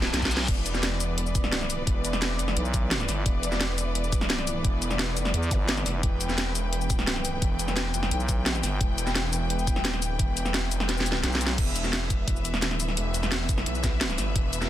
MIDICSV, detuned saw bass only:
0, 0, Header, 1, 2, 480
1, 0, Start_track
1, 0, Key_signature, 1, "minor"
1, 0, Tempo, 346821
1, 668, Time_signature, 4, 2, 24, 8
1, 20338, End_track
2, 0, Start_track
2, 0, Title_t, "Detuned saw bass"
2, 0, Program_c, 0, 39
2, 0, Note_on_c, 0, 28, 99
2, 170, Note_off_c, 0, 28, 0
2, 668, Note_on_c, 0, 28, 96
2, 2570, Note_off_c, 0, 28, 0
2, 2589, Note_on_c, 0, 28, 100
2, 3290, Note_off_c, 0, 28, 0
2, 3309, Note_on_c, 0, 29, 98
2, 3530, Note_off_c, 0, 29, 0
2, 4509, Note_on_c, 0, 28, 96
2, 6410, Note_off_c, 0, 28, 0
2, 6429, Note_on_c, 0, 28, 103
2, 7130, Note_off_c, 0, 28, 0
2, 7149, Note_on_c, 0, 29, 102
2, 7370, Note_off_c, 0, 29, 0
2, 8349, Note_on_c, 0, 28, 102
2, 10250, Note_off_c, 0, 28, 0
2, 10269, Note_on_c, 0, 28, 104
2, 10970, Note_off_c, 0, 28, 0
2, 10990, Note_on_c, 0, 29, 98
2, 11210, Note_off_c, 0, 29, 0
2, 12188, Note_on_c, 0, 28, 98
2, 13530, Note_off_c, 0, 28, 0
2, 13530, Note_on_c, 0, 27, 98
2, 13904, Note_off_c, 0, 27, 0
2, 13904, Note_on_c, 0, 26, 98
2, 14089, Note_off_c, 0, 26, 0
2, 14108, Note_on_c, 0, 28, 100
2, 14809, Note_off_c, 0, 28, 0
2, 14829, Note_on_c, 0, 29, 100
2, 15050, Note_off_c, 0, 29, 0
2, 15069, Note_on_c, 0, 28, 97
2, 15530, Note_off_c, 0, 28, 0
2, 16029, Note_on_c, 0, 28, 101
2, 17371, Note_off_c, 0, 28, 0
2, 17371, Note_on_c, 0, 27, 101
2, 17745, Note_off_c, 0, 27, 0
2, 17745, Note_on_c, 0, 26, 101
2, 17930, Note_off_c, 0, 26, 0
2, 17950, Note_on_c, 0, 28, 100
2, 18650, Note_off_c, 0, 28, 0
2, 18669, Note_on_c, 0, 29, 105
2, 18890, Note_off_c, 0, 29, 0
2, 18909, Note_on_c, 0, 35, 97
2, 19610, Note_off_c, 0, 35, 0
2, 19630, Note_on_c, 0, 31, 103
2, 19850, Note_off_c, 0, 31, 0
2, 19869, Note_on_c, 0, 28, 100
2, 20338, Note_off_c, 0, 28, 0
2, 20338, End_track
0, 0, End_of_file